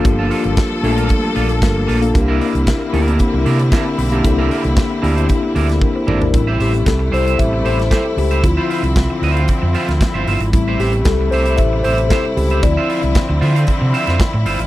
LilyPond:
<<
  \new Staff \with { instrumentName = "Clean electric guitar" } { \time 4/4 \key a \phrygian \tempo 4 = 114 r16 <bes f' a'>16 <bes f' a'>16 r8. <bes f' a'>16 <bes f' bes'>16 r8 <bes f' a'>16 r8. <bes f' a'>16 r16 | r16 <d' e' bes'>16 <d' e' bes'>16 r8. <d' e' bes'>16 <d' e' bes'>16 r8 <d' e' bes'>16 r16 <d' e' bes'>16 r8 <d' e' bes'>16 | r16 <d' e' bes'>16 <d' e' bes'>16 r8. <d' e' bes'>16 <d' e' c''>16 r8 <d' e' bes'>16 r8. <d' e' bes'>16 r16 | r16 <g' c'' e''>16 <g' c'' e''>16 r8. <g' c'' e''>16 <g' c'' e''>16 r8 <g' c'' e''>16 r16 <g' c'' e''>16 r8 <g' c'' e''>16 |
r16 <f' c'' e''>16 <f' c'' e''>16 r8. <f' c'' e''>16 <f' c'' f''>16 r8 <f' c'' e''>16 r8 <f' c'' e''>16 <f' c'' e''>16 r16 | r16 <g' c'' e''>16 <g' c'' e''>16 r8. <g' c'' e''>16 <g' c'' e''>16 r8 <g' c'' e''>16 r16 <g' c'' e''>16 r8 <g' c'' e''>16 | r16 <f' c'' e''>16 <f' c'' e''>16 r8. <f' c'' e''>16 <f' c'' f''>16 r8 <f' c'' e''>16 <f' c'' e''>16 r8 <f' c'' e''>16 r16 | }
  \new Staff \with { instrumentName = "Tine electric piano" } { \time 4/4 \key a \phrygian << { <bes d' f' g'>4 r8 <a bes d' f' a'>4. r8. <bes d' f' a'>16 | <bes d' e' g'>4 r8 <bes d' e' g'>4. r8. <bes d' e' g'>16 | <bes d' e' a'>4 r8 <bes d' e' g'>4. <d' bes'>16 <e' c''>16 d''16 <d' bes'>16~ | <d' bes'>16 r16 g'8 a'8 c''8 e''8 c''8 a'8 g'8 |
f'8 r2. r8 | r8 g'8 a'8 c''8 e''8 c''8 a'8 g'8 | d''8 r2. r8 | } \\ { r1 | r1 | r1 | <g c' e'>4. r2 r8 |
<f c' e'>4. r2 r8 | <g c' e'>4. r2 r8 | <f c' e'>4. r2 r8 | } >> }
  \new Staff \with { instrumentName = "String section" } { \clef bass \time 4/4 \key a \phrygian << { a'1 | e'1~ | e'1 | e'1~ |
e'1 | e'1~ | e'1 | } \\ { <f g bes>1 | <d c'>1~ | <d c'>1 | <c g a>1 |
<d f c'>1 | <c g a>1 | <d f c'>1 | } >> }
  \new Staff \with { instrumentName = "Fingered electric bass" } { \clef bass \time 4/4 \key a \phrygian g,,8 r16 g,,16 r8 bes,,8 r8 bes,,8 g,,8 bes,,8 | c,8 r16 c,16 r8 d,8 r16 c,16 c8 r8 b,,8 | c,8 r16 c,16 r8 d,8 r8 d,8 r8 aes,,8 | a,,8 a,,8 c,8 c,8 a,,8 a,,8 r8 cis,8 |
d,16 r8 c,8 r16 d,8 r16 f,16 r16 d,16 r16 g,,16 g,,16 aes,,16 | a,,8 a,,8 c,8 c,8 a,,8 a,,8 r8 cis,8 | d,16 r8 c,16 r16 d,16 d8 r16 c16 r16 f,16 r16 a,16 g,,16 aes,,16 | }
  \new DrumStaff \with { instrumentName = "Drums" } \drummode { \time 4/4 <hh bd>8 hho16 hh16 <hh bd sn>8 hho16 hh16 <hh bd>8 hho16 hh16 <hh bd sn>8 hho16 hh16 | <hh bd>8 hho16 hh16 <hh bd sn>8 hho16 hh16 <hh bd>8 hho16 hh16 <hh bd sn>8 hho16 hh16 | <hh bd>8 hho16 hh16 <hh bd sn>8 hho16 hh16 <hh bd>8 hho16 <hh sn>16 <bd tommh>8 toml16 tomfh16 | <hh bd>8 hho16 hh16 <hh bd sn>8 hho16 hh16 <hh bd>8 hho16 <hh sn>16 <hh bd sn>8 hho16 hh16 |
<hh bd>8 hho16 hh16 <hh bd sn>8 hho16 hh16 <hh bd>8 hho16 <hh sn>16 <hh bd sn>8 hho16 hh16 | <hh bd>8 hho16 hh16 <hh bd sn>8 hho16 hh16 <hh bd>8 hho16 hh16 <hh bd sn>8 hho16 hh16 | <hh bd>8 hho16 hh16 <hh bd sn>8 hho16 hh16 <hh bd>8 hho16 <hh sn>16 <hh bd sn>8 hho16 hh16 | }
>>